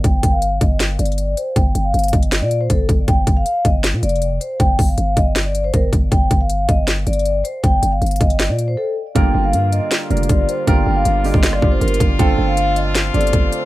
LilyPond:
<<
  \new Staff \with { instrumentName = "Vibraphone" } { \time 4/4 \key g \minor \tempo 4 = 158 g''8. f''8. ees''8 r8 d''4 c''8 | g''8. f''8. ees''8. d''8 c''16 a'8 r8 | g''8. f''8. ees''8 r8 d''4 c''8 | g''8. f''8. ees''8. d''8 c''16 bes'8 r8 |
g''8. f''8. ees''8 r8 d''4 c''8 | g''8. f''8. ees''8. d''8 c''16 a'8 r8 | g''8. f''8. ees''8 r8 d''4 c''8 | g''8. f''8. ees''8. d''8 c''16 bes'8 r8 |
g''8. f''8. ees''8 r8 d''4 c''8 | }
  \new Staff \with { instrumentName = "Grand piano" } { \time 4/4 \key g \minor r1 | r1 | r1 | r1 |
r1 | r1 | <d g bes f' bes'>4. r4 <d g bes f' bes'>4. | <d g bes f' bes'>4. <d g bes f' g'>4 <d g bes f' g'>4. |
<d a c' f' a'>4. r4 <d a c' f' g'>4. | }
  \new Staff \with { instrumentName = "Brass ensemble" } { \time 4/4 \key g \minor << { r1 | r1 | r1 | r1 |
r1 | r1 | f'1~ | f'1~ |
f'1 | } \\ { r1 | r1 | r1 | r1 |
r1 | r1 | <d g bes>1~ | <d g bes>1 |
<d a c'>1 | } >> }
  \new Staff \with { instrumentName = "808-style bass" } { \clef bass \time 4/4 \key g \minor g,,8 g,,4 g,,4 g,,4 r8 | g,,8 g,,8 g,,8 g,,8. bes,8. g,,8 g,,8 | g,,8 g,,8 r8 g,,8. bes,16 f,,4 r8 | g,,8 g,,8 g,,8 g,,4. g,,8 g,,8 |
g,,8 g,,4 g,,4 g,,4 r8 | g,,8 g,,8 g,,8 g,,8. bes,8. r4 | g,,8 g,,8 g,8. r8. f,,8 g,,8 r8 | g,,8 g,,8 g,,8. g,,8. g,,8 g,,8 g,,8 |
g,,8 g,,2 g,,8 g,,8 r8 | }
  \new DrumStaff \with { instrumentName = "Drums" } \drummode { \time 4/4 <hh bd>8 <hh bd>8 hh8 <hh bd>8 \tuplet 3/2 { <hh sn>16 r16 r16 hh16 hh16 hh16 } hh8 hh8 | <hh bd>8 hh8 hh32 hh32 hh32 hh32 <hh bd>16 hh16 <hh sn>8 hh8 <hh bd>8 <hh bd>8 | <hh bd>8 <hh bd>8 hh8 <hh bd>8 \tuplet 3/2 { <hh sn>16 r16 r16 hh16 hh16 hh16 } hh8 hh8 | <hh bd>8 <hho bd>8 hh8 <hh bd>8 <hh sn>8 hh8 <hh bd>8 <hh bd>8 |
<hh bd>8 <hh bd>8 hh8 <hh bd>8 \tuplet 3/2 { <hh sn>16 r16 r16 hh16 hh16 hh16 } hh8 hh8 | <hh bd>8 hh8 hh32 hh32 hh32 hh32 <hh bd>16 hh16 <hh sn>8 hh8 r4 | <hh bd>4 hh8 hh8 \tuplet 3/2 { <hh sn>16 r16 r16 hh16 hh16 hh16 } <hh bd>8 hh8 | <hh bd>4 hh8 hho16 bd16 <hh sn>16 ss16 bd8 \tuplet 3/2 { hh16 hh16 hh16 <hh bd>16 r16 r16 } |
<hh bd>4 hh8 hh8 \tuplet 3/2 { <hh sn>16 r16 r16 hh16 hh16 hh16 } <hh bd>8 hh8 | }
>>